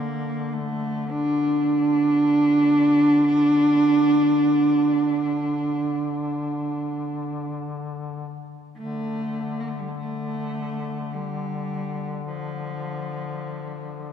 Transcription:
Already playing: duduk D3, cello A#3
0.53 cello A3
1.11 cello D4
8.76 duduk D3, cello A3
9.60 cello A#3
9.68 cello A3
9.79 cello G3
9.88 cello A3
9.98 cello A3
11.13 cello G3
12.28 cello F3

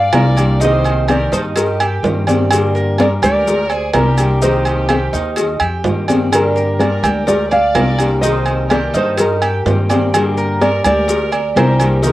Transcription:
Already playing: cuban tres D5, violin section D5, nylon-string guitar F5
0.13 upright bass C2, steel-string acoustic guitar G3 A#3 D4 G4, cuban tres A#4, cowbell, high conga, low timbale, low agogo, maracas
0.37 steel-string acoustic guitar G3 A#3 D4 G4, cowbell, high conga, low agogo, maracas
0.60 steel-string acoustic guitar C3 D#3 A#3 C4 G4, cuban tres D#4, violin section C5, cowbell, high conga, maracas
0.64 nylon-string guitar D#5
0.84 cowbell, high conga, low agogo, maracas
1.08 steel-string acoustic guitar D#3 A#3 C4 G4, cuban tres G4, violin section A#4, nylon-string guitar D5, cowbell, high conga, low timbale, low agogo, maracas
1.32 upright bass G2, cuban tres D#4, violin section A4, nylon-string guitar C5, cowbell, maracas
1.56 violin section G4, nylon-string guitar A#4, muted steel-string acoustic guitar stroke, cowbell, high conga, low agogo, maracas
1.80 cuban tres G4, high conga, low agogo, maracas
2.03 upright bass G2, steel-string acoustic guitar D#3 A#3 C4 G4, cowbell, high conga, low timbale, maracas
2.27 steel-string acoustic guitar D#3 A#3 C4 G4, cuban tres D5, cowbell, high conga, low agogo, maracas
2.51 steel-string acoustic guitar D3 G3 A#3 D4 G4, cowbell, high conga, low agogo, maracas
2.75 cuban tres A#4, high conga, maracas
2.98 steel-string acoustic guitar G3 A#3 D4 G4, violin section A#4, nylon-string guitar D5, cowbell, high conga, low timbale, low agogo, maracas
3.22 upright bass D2, cuban tres G4, violin section A#4, nylon-string guitar D5, high conga, low conga, low agogo, maracas
3.47 muted steel-string acoustic guitar stroke, cowbell, high conga, low conga, maracas
3.70 cuban tres D5, high conga, low agogo, maracas
3.74 violin section G#4, nylon-string guitar C5
3.94 upright bass C2, steel-string acoustic guitar G3 A#3 D4 G4, violin section G4, cuban tres A#4, nylon-string guitar A#4, cowbell, high conga, low timbale, low agogo, maracas
4.18 steel-string acoustic guitar G3 A#3 D4 G4, cowbell, high conga, low agogo, maracas
4.42 steel-string acoustic guitar C3 D#3 A#3 C4 G4, cuban tres D#4, violin section G4, nylon-string guitar C5, cowbell, high conga, maracas
4.65 cowbell, high conga, low agogo, maracas
4.89 steel-string acoustic guitar D#3 A#3 C4 G4, cuban tres G4, cowbell, high conga, low timbale, low agogo, maracas
5.13 upright bass D#2, cuban tres D#4, cowbell, maracas
5.36 muted steel-string acoustic guitar stroke, cowbell, high conga, low agogo, maracas
5.60 upright bass F2, cuban tres G4, high conga, low agogo, maracas
5.84 upright bass G2, steel-string acoustic guitar D#3 A#3 C4 G4, cowbell, high conga, low timbale, maracas
6.08 steel-string acoustic guitar D#3 A#3 C4 G4, cuban tres D5, cowbell, high conga, low agogo, maracas
6.31 steel-string acoustic guitar D3 G3 A#3 D4 G4, violin section G4, nylon-string guitar A#4, cowbell, high conga, low agogo, maracas
6.56 cuban tres A#4, high conga, maracas
6.78 steel-string acoustic guitar G3 A#3, violin section A#4, nylon-string guitar D5, cowbell, high conga, low timbale, low agogo, maracas
6.82 steel-string acoustic guitar D4 G4
7.03 upright bass D2, cuban tres G4, high conga, low conga, low agogo, maracas
7.26 violin section A#4, nylon-string guitar D5, muted steel-string acoustic guitar stroke, cowbell, high conga, low conga, maracas
7.50 violin section D5, cuban tres D5, nylon-string guitar F5, high conga, low agogo, maracas
7.75 upright bass C2, steel-string acoustic guitar G3 A#3 D4 G4, cuban tres A#4, cowbell, high conga, low timbale, low agogo, maracas
7.99 steel-string acoustic guitar G3 A#3 D4 G4, cowbell, high conga, low agogo, maracas
8.20 steel-string acoustic guitar C3 D#3, cuban tres D#4, violin section C5, nylon-string guitar D#5, cowbell, high conga, maracas
8.25 steel-string acoustic guitar A#3 C4 G4
8.46 cowbell, high conga, low agogo, maracas
8.69 steel-string acoustic guitar D#3 A#3 C4 G4, cuban tres G4, violin section A#4, nylon-string guitar D5, cowbell, high conga, low timbale, low agogo, maracas
8.93 upright bass G2, cuban tres D#4, violin section A4, nylon-string guitar C5, cowbell, maracas
9.17 violin section G4, nylon-string guitar A#4, muted steel-string acoustic guitar stroke, cowbell, high conga, low agogo, maracas
9.42 cuban tres G4, high conga, low agogo, maracas
9.65 upright bass G2, steel-string acoustic guitar D#3 A#3 C4 G4, cowbell, high conga, low timbale, maracas
9.89 steel-string acoustic guitar D#3 A#3 C4 G4, cuban tres D5, cowbell, high conga, low agogo, maracas
10.14 steel-string acoustic guitar D3 G3 A#3 D4 G4, cowbell, high conga, low agogo, maracas
10.37 cuban tres A#4, high conga, maracas
10.61 steel-string acoustic guitar G3 A#3 D4 G4, violin section A#4, nylon-string guitar D5, cowbell, high conga, low timbale, low agogo, maracas
10.84 upright bass D2, cuban tres G4, violin section A#4, nylon-string guitar D5, high conga, low conga, low agogo, maracas
11.08 muted steel-string acoustic guitar stroke, cowbell, high conga, maracas
11.32 cuban tres D5, high conga, low agogo, maracas
11.56 upright bass C2, steel-string acoustic guitar G3 A#3 D4 G4, violin section G4, cuban tres A#4, nylon-string guitar C5, cowbell, high conga, low timbale, low agogo, maracas
11.80 steel-string acoustic guitar G3 A#3 D4 G4, cowbell, high conga, low agogo, maracas
12.03 steel-string acoustic guitar C3 D#3 A#3 C4 G4, cuban tres D#4, violin section G4, nylon-string guitar A#4, cowbell, high conga, maracas

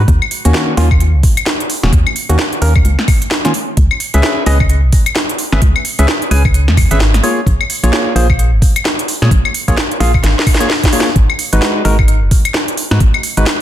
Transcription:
0.08 fm bass D#2, kick, closed hi-hat
0.22 claves
0.31 open hi-hat
0.45 fm bass D#2, synth stab D#3 A#3 C#4 F#4, closed hi-hat
0.54 snare
0.77 fm bass D#2, synth stab D#3 A#3 C#4 F4, snare, open hi-hat
0.91 kick, claves
1.00 closed hi-hat
1.14 fm bass C#2
1.23 kick, open hi-hat
1.37 closed hi-hat, claves
1.46 snare
1.60 closed hi-hat
1.70 open hi-hat
1.83 fm bass D#1, synth stab D#3 A#3 C#4 F#4, snare
1.93 fm bass D#2, kick, closed hi-hat
2.07 claves
2.16 open hi-hat
2.29 fm bass D#2, synth stab D#3 A#3 C#4 F#4, closed hi-hat
2.39 snare
2.53 closed hi-hat
2.62 fm bass D#2, synth stab D#3 A#3 C#4 A#4, open hi-hat
2.76 kick, claves
2.85 fm bass C#2, closed hi-hat
2.99 snare
3.08 kick, open hi-hat, claves
3.22 closed hi-hat
3.31 snare
3.45 synth stab D#3 A#3 C#4 F4, snare, closed hi-hat
3.54 open hi-hat
3.77 fm bass C#2, kick, closed hi-hat
3.91 claves
4.00 open hi-hat
4.14 fm bass C#2, synth stab C#4 G#4 B4 E5, closed hi-hat
4.23 snare
4.46 fm bass C#2, synth stab C#4 G#4 B4 D#5, snare, open hi-hat
4.60 kick, claves
4.69 closed hi-hat
4.83 fm bass B1
4.92 kick, open hi-hat
5.06 closed hi-hat, claves
5.16 snare
5.29 closed hi-hat
5.38 open hi-hat
5.52 fm bass G#1, synth stab C#4 G#4 B4 E5, snare
5.62 fm bass C#2, kick, closed hi-hat
5.76 claves
5.85 open hi-hat
5.99 fm bass C#2, synth stab C#4 G#4 B4 E5, closed hi-hat
6.08 snare
6.22 closed hi-hat
6.31 fm bass C#2, synth stab C#4 G#4 B4 G#5, open hi-hat
6.45 kick, claves
6.54 closed hi-hat
6.68 fm bass E2, snare
6.77 kick, open hi-hat, claves
6.91 fm bass G#1, synth stab C#4 G#4 B4 E5, closed hi-hat
7.00 snare
7.14 snare, closed hi-hat
7.23 synth stab A#3 F4 G#4 C#5, open hi-hat
7.46 fm bass A#1, kick, closed hi-hat
7.61 claves
7.70 open hi-hat
7.83 fm bass A#1, synth stab A#3 F4 G#4 C#5, closed hi-hat
7.93 snare
8.16 fm bass A#1, synth stab A#3 F4 G#4 C5, open hi-hat
8.30 kick, claves
8.39 closed hi-hat
8.53 fm bass G#1
8.62 kick, open hi-hat
8.76 closed hi-hat, claves
8.85 snare
8.99 closed hi-hat
9.08 open hi-hat
9.22 fm bass A#2, synth stab A#3 F4 G#4 C#5, snare
9.31 fm bass A#1, kick, closed hi-hat
9.45 claves
9.54 open hi-hat
9.68 fm bass A#1, synth stab A#3 F4 G#4 C#5, kick, closed hi-hat
9.77 snare
9.91 closed hi-hat
10.00 fm bass A#1, synth stab A#3 F4 G#4 F5, snare, open hi-hat
10.14 kick, claves
10.23 fm bass G#1, snare, closed hi-hat
10.39 snare
10.47 kick, open hi-hat, claves
10.54 snare
10.60 synth stab A#3 F4 G#4 C#5, closed hi-hat
10.70 snare
10.83 kick, snare, closed hi-hat
10.93 synth stab A#3 F4 G#4 C#5, open hi-hat
11.00 snare
11.16 fm bass G#1, kick, closed hi-hat
11.30 claves
11.39 open hi-hat
11.53 fm bass G#1, synth stab G#3 D#4 F#4 B4, closed hi-hat
11.62 snare
11.85 fm bass G#1, synth stab G#3 D#4 F#4 A#4, snare, open hi-hat
11.99 kick, claves
12.08 closed hi-hat
12.22 fm bass F#1
12.31 kick, open hi-hat
12.45 closed hi-hat, claves
12.54 snare
12.68 closed hi-hat
12.77 open hi-hat
12.91 fm bass G#2, synth stab G#3 D#4 F#4 B4, snare
13.00 fm bass G#1, kick, closed hi-hat
13.14 claves
13.23 open hi-hat
13.37 fm bass G#1, synth stab G#3 D#4 F#4 B4, closed hi-hat
13.46 snare

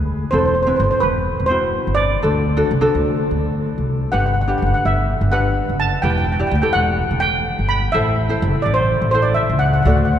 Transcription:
Already playing: upright bass D2
0.31 upright bass E1, ukulele C4 E4 A4, steel pan C5
0.38 steel pan C5
0.46 steel pan C5
0.55 steel pan C5
0.63 ukulele C4, steel pan C5
0.67 ukulele E4 B4, steel pan C5
0.76 upright bass G1, steel pan C5
0.83 steel pan C5
0.91 steel pan C5
1.00 upright bass E1, steel pan B4
1.40 upright bass E1
1.46 ukulele C4, steel pan C5
1.50 ukulele E4 F#4
1.87 upright bass G1
1.95 steel pan D5
2.22 upright bass D2, ukulele D4 F#4 A4
2.57 ukulele D4 F#4 A4
2.71 upright bass C2
2.81 ukulele D4 F#4 A4
2.95 upright bass D2
3.31 upright bass D2
3.78 upright bass C2
4.12 upright bass G1, ukulele D4 G4 B4, steel pan F#5
4.19 steel pan F#5
4.26 steel pan F#5
4.34 steel pan F#5
4.41 steel pan F#5
4.48 ukulele D4 G4 B4, steel pan F#5
4.58 steel pan F#5
4.62 upright bass F#1, steel pan F#5
4.74 steel pan F#5
4.85 upright bass G1, steel pan E5
5.21 upright bass G1
5.32 ukulele D4 G4 B4, steel pan F#5
5.69 upright bass F#1
5.80 steel pan A5
6.02 upright bass E1, ukulele E4 G4 B4, steel pan G5
6.10 steel pan G5
6.18 steel pan G5
6.25 steel pan G5
6.32 steel pan G5
6.39 ukulele E4 G4 D5, steel pan G5
6.47 steel pan G5
6.51 upright bass D2
6.55 steel pan G5
6.62 ukulele E4 G4 A4, steel pan G5
6.73 upright bass E1, steel pan F#5
7.11 upright bass E1
7.20 steel pan G5
7.59 upright bass G1
7.69 steel pan B5
7.92 upright bass A1, ukulele E4 A4 C5, steel pan E5
8.29 ukulele E4 A4 C5
8.42 upright bass F#1
8.62 upright bass A1, steel pan D5
8.74 steel pan C5
9.02 upright bass A1
9.11 ukulele E4 A4 C5, steel pan C5
9.22 steel pan D5
9.34 steel pan E5
9.49 upright bass C#2
9.59 steel pan F#5
9.66 steel pan F#5
9.73 steel pan F#5
9.82 upright bass D2, ukulele F#4, steel pan F#5
9.86 ukulele A4 D5, steel pan F#5
9.97 steel pan F#5
10.05 steel pan F#5
10.13 steel pan F#5

